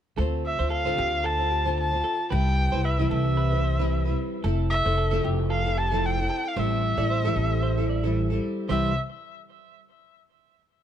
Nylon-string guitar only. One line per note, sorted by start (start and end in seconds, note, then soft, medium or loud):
0.16 0.58 A3 medium
0.16 0.59 C4 medium
0.16 0.59 F4 medium
0.16 0.57 C5 medium
0.59 0.85 C4 soft
0.59 0.85 F4 soft
0.59 0.84 C5 soft
0.85 1.40 D3 medium
0.85 1.39 A3 medium
0.85 1.41 C4 medium
0.85 1.39 F4 medium
0.85 1.39 C5 medium
1.39 1.65 C4 soft
1.39 1.65 F4 soft
1.39 1.64 C5 soft
1.66 1.93 D3 medium
1.66 1.93 A3 soft
1.66 1.93 C4 medium
1.66 1.92 F4 medium
1.66 1.90 C5 medium
1.92 2.30 C4 soft
1.92 2.31 F4 soft
1.92 2.30 C5 soft
2.30 2.72 G3 medium
2.30 2.72 C4 medium
2.30 2.72 E4 medium
2.30 2.71 B4 medium
2.72 2.99 G3 soft
2.72 2.99 C4 soft
2.72 2.98 E4 soft
2.72 2.97 B4 soft
2.99 3.53 C3 medium
2.99 3.81 E3 medium
2.99 3.53 G3 medium
2.99 3.54 C4 medium
2.99 3.53 E4 medium
2.99 3.51 B4 medium
3.52 3.79 G3 soft
3.52 3.79 C4 soft
3.52 3.79 E4 soft
3.52 3.78 B4 soft
3.79 4.07 C3 medium
3.79 4.06 E3 medium
3.79 4.06 G3 medium
3.79 4.06 C4 medium
3.79 4.05 E4 medium
3.79 4.04 B4 medium
4.05 4.43 G3 soft
4.05 4.43 C4 soft
4.05 4.44 E4 medium
4.05 4.44 B4 medium
4.43 4.85 A3 medium
4.43 4.85 C4 medium
4.43 4.85 E4 medium
4.43 4.84 A4 medium
4.85 5.11 C4 soft
4.85 5.10 E4 soft
4.85 5.10 A4 medium
5.11 5.65 F3 medium
5.11 5.92 A3 medium
5.11 5.66 C4 medium
5.11 5.65 E4 medium
5.11 5.64 A4 medium
5.64 5.91 C4 soft
5.64 5.91 E4 soft
5.64 5.90 A4 soft
5.91 6.19 F3 medium
5.91 6.19 A3 medium
5.91 6.18 C4 medium
5.91 6.18 E4 medium
5.91 6.16 A4 medium
6.18 6.56 C4 soft
6.18 6.57 E4 soft
6.18 6.56 A4 soft
6.56 6.97 G3 medium
6.56 6.98 C4 medium
6.56 6.98 E4 medium
6.56 6.96 A4 medium
6.98 7.25 G3 soft
6.98 7.24 C4 soft
6.98 7.24 E4 soft
6.98 7.24 A4 soft
7.25 7.79 A2 medium
7.25 8.05 E3 medium
7.25 7.80 G3 medium
7.25 7.79 C4 medium
7.25 7.78 E4 medium
7.25 7.76 A4 medium
7.78 8.04 G3 soft
7.78 8.03 C4 soft
7.78 8.03 E4 soft
7.78 8.02 A4 medium
8.03 8.31 A2 medium
8.03 8.31 E3 medium
8.03 8.31 G3 medium
8.03 8.31 C4 medium
8.03 8.30 E4 medium
8.03 8.29 A4 medium
8.30 8.69 G3 soft
8.30 8.69 C4 soft
8.30 8.69 E4 soft
8.30 8.69 A4 medium
8.68 8.90 C3 medium
8.68 8.91 E3 medium
8.68 8.91 G3 medium
8.68 8.91 C4 medium
8.68 8.92 E4 medium
8.68 8.92 B4 medium